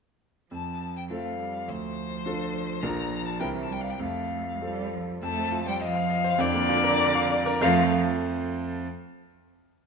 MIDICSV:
0, 0, Header, 1, 4, 480
1, 0, Start_track
1, 0, Key_signature, -1, "major"
1, 0, Tempo, 581395
1, 429, Time_signature, 2, 2, 24, 8
1, 3304, Tempo, 613497
1, 4264, Tempo, 589391
1, 5704, Tempo, 612245
1, 7952, End_track
2, 0, Start_track
2, 0, Title_t, "Violin"
2, 0, Program_c, 0, 40
2, 431, Note_on_c, 0, 81, 65
2, 768, Note_off_c, 0, 81, 0
2, 802, Note_on_c, 0, 79, 56
2, 848, Note_off_c, 0, 79, 0
2, 912, Note_on_c, 0, 77, 64
2, 1390, Note_on_c, 0, 72, 85
2, 1402, Note_off_c, 0, 77, 0
2, 2326, Note_on_c, 0, 82, 87
2, 2338, Note_off_c, 0, 72, 0
2, 2688, Note_on_c, 0, 81, 80
2, 2701, Note_off_c, 0, 82, 0
2, 2804, Note_off_c, 0, 81, 0
2, 2809, Note_on_c, 0, 79, 79
2, 2875, Note_off_c, 0, 79, 0
2, 2995, Note_on_c, 0, 81, 64
2, 3070, Note_on_c, 0, 79, 72
2, 3082, Note_off_c, 0, 81, 0
2, 3146, Note_on_c, 0, 77, 70
2, 3158, Note_off_c, 0, 79, 0
2, 3220, Note_on_c, 0, 79, 61
2, 3233, Note_off_c, 0, 77, 0
2, 3296, Note_on_c, 0, 77, 71
2, 3308, Note_off_c, 0, 79, 0
2, 4023, Note_off_c, 0, 77, 0
2, 4262, Note_on_c, 0, 81, 97
2, 4600, Note_off_c, 0, 81, 0
2, 4633, Note_on_c, 0, 79, 76
2, 4737, Note_off_c, 0, 79, 0
2, 4742, Note_on_c, 0, 77, 104
2, 5221, Note_on_c, 0, 74, 127
2, 5233, Note_off_c, 0, 77, 0
2, 6188, Note_off_c, 0, 74, 0
2, 6191, Note_on_c, 0, 77, 104
2, 6455, Note_off_c, 0, 77, 0
2, 7952, End_track
3, 0, Start_track
3, 0, Title_t, "Grand piano"
3, 0, Program_c, 1, 0
3, 424, Note_on_c, 1, 41, 42
3, 588, Control_c, 1, 64, 127
3, 895, Note_off_c, 1, 41, 0
3, 909, Note_on_c, 1, 60, 37
3, 914, Note_on_c, 1, 65, 34
3, 916, Note_on_c, 1, 69, 41
3, 1353, Note_off_c, 1, 60, 0
3, 1356, Note_off_c, 1, 65, 0
3, 1357, Note_off_c, 1, 69, 0
3, 1384, Note_on_c, 1, 38, 55
3, 1403, Control_c, 1, 64, 0
3, 1544, Control_c, 1, 64, 127
3, 1844, Note_off_c, 1, 38, 0
3, 1863, Note_on_c, 1, 62, 44
3, 1866, Note_on_c, 1, 65, 46
3, 1871, Note_on_c, 1, 69, 54
3, 2299, Note_off_c, 1, 62, 0
3, 2301, Note_off_c, 1, 65, 0
3, 2304, Note_off_c, 1, 69, 0
3, 2332, Note_on_c, 1, 62, 50
3, 2334, Note_on_c, 1, 34, 68
3, 2339, Note_on_c, 1, 65, 48
3, 2341, Note_on_c, 1, 70, 51
3, 2347, Control_c, 1, 64, 0
3, 2488, Control_c, 1, 64, 127
3, 2779, Note_off_c, 1, 62, 0
3, 2782, Note_off_c, 1, 65, 0
3, 2784, Note_off_c, 1, 70, 0
3, 2798, Note_off_c, 1, 34, 0
3, 2805, Note_on_c, 1, 36, 63
3, 2806, Note_on_c, 1, 60, 42
3, 2811, Note_on_c, 1, 64, 44
3, 2816, Note_on_c, 1, 70, 49
3, 2827, Control_c, 1, 64, 0
3, 2943, Control_c, 1, 64, 127
3, 3268, Note_off_c, 1, 60, 0
3, 3270, Note_off_c, 1, 64, 0
3, 3273, Note_off_c, 1, 70, 0
3, 3285, Note_off_c, 1, 36, 0
3, 3299, Note_on_c, 1, 41, 52
3, 3319, Control_c, 1, 64, 0
3, 3452, Control_c, 1, 64, 127
3, 3769, Note_off_c, 1, 41, 0
3, 3782, Note_on_c, 1, 60, 41
3, 3785, Note_on_c, 1, 65, 39
3, 3788, Note_on_c, 1, 69, 42
3, 4230, Note_off_c, 1, 60, 0
3, 4231, Note_off_c, 1, 65, 0
3, 4233, Note_off_c, 1, 69, 0
3, 4263, Note_on_c, 1, 41, 64
3, 4280, Control_c, 1, 64, 0
3, 4378, Note_on_c, 1, 60, 44
3, 4431, Control_c, 1, 64, 127
3, 4499, Note_on_c, 1, 65, 55
3, 4574, Note_off_c, 1, 60, 0
3, 4618, Note_on_c, 1, 72, 55
3, 4695, Note_off_c, 1, 65, 0
3, 4737, Note_on_c, 1, 75, 68
3, 4814, Note_off_c, 1, 72, 0
3, 4856, Note_on_c, 1, 77, 58
3, 4933, Note_off_c, 1, 75, 0
3, 4969, Note_on_c, 1, 75, 66
3, 5052, Note_off_c, 1, 77, 0
3, 5090, Note_on_c, 1, 72, 77
3, 5167, Note_off_c, 1, 75, 0
3, 5192, Note_off_c, 1, 41, 0
3, 5204, Note_on_c, 1, 41, 96
3, 5215, Note_off_c, 1, 72, 0
3, 5239, Control_c, 1, 64, 0
3, 5331, Note_on_c, 1, 58, 70
3, 5389, Control_c, 1, 64, 127
3, 5452, Note_on_c, 1, 65, 84
3, 5528, Note_off_c, 1, 58, 0
3, 5570, Note_on_c, 1, 70, 83
3, 5650, Note_off_c, 1, 65, 0
3, 5700, Note_on_c, 1, 74, 102
3, 5770, Note_off_c, 1, 70, 0
3, 5823, Note_on_c, 1, 77, 88
3, 5895, Note_off_c, 1, 74, 0
3, 5944, Note_on_c, 1, 74, 85
3, 6019, Note_off_c, 1, 77, 0
3, 6068, Note_on_c, 1, 70, 86
3, 6140, Note_off_c, 1, 74, 0
3, 6151, Note_off_c, 1, 41, 0
3, 6185, Note_on_c, 1, 65, 84
3, 6186, Note_on_c, 1, 57, 95
3, 6187, Note_on_c, 1, 72, 84
3, 6188, Note_off_c, 1, 70, 0
3, 6189, Note_on_c, 1, 41, 86
3, 6189, Note_on_c, 1, 53, 102
3, 6189, Note_on_c, 1, 60, 88
3, 6204, Control_c, 1, 64, 0
3, 6333, Control_c, 1, 64, 127
3, 6452, Note_off_c, 1, 65, 0
3, 6453, Note_off_c, 1, 57, 0
3, 6453, Note_off_c, 1, 72, 0
3, 6454, Note_off_c, 1, 41, 0
3, 6454, Note_off_c, 1, 53, 0
3, 6454, Note_off_c, 1, 60, 0
3, 7156, Control_c, 1, 64, 0
3, 7952, End_track
4, 0, Start_track
4, 0, Title_t, "Cello"
4, 0, Program_c, 2, 42
4, 424, Note_on_c, 2, 53, 42
4, 914, Note_on_c, 2, 57, 45
4, 926, Note_off_c, 2, 53, 0
4, 1144, Note_off_c, 2, 57, 0
4, 1149, Note_on_c, 2, 55, 46
4, 1386, Note_on_c, 2, 53, 54
4, 1398, Note_off_c, 2, 55, 0
4, 2818, Note_on_c, 2, 52, 59
4, 2830, Note_off_c, 2, 53, 0
4, 3061, Note_on_c, 2, 55, 58
4, 3074, Note_off_c, 2, 52, 0
4, 3303, Note_off_c, 2, 55, 0
4, 3308, Note_on_c, 2, 57, 50
4, 3731, Note_off_c, 2, 57, 0
4, 3792, Note_on_c, 2, 55, 62
4, 4036, Note_on_c, 2, 53, 53
4, 4048, Note_off_c, 2, 55, 0
4, 4259, Note_off_c, 2, 53, 0
4, 4264, Note_on_c, 2, 57, 78
4, 4601, Note_off_c, 2, 57, 0
4, 4625, Note_on_c, 2, 55, 76
4, 4674, Note_off_c, 2, 55, 0
4, 4751, Note_on_c, 2, 53, 83
4, 5226, Note_on_c, 2, 50, 100
4, 5239, Note_off_c, 2, 53, 0
4, 6181, Note_off_c, 2, 50, 0
4, 6186, Note_on_c, 2, 53, 108
4, 6452, Note_off_c, 2, 53, 0
4, 7952, End_track
0, 0, End_of_file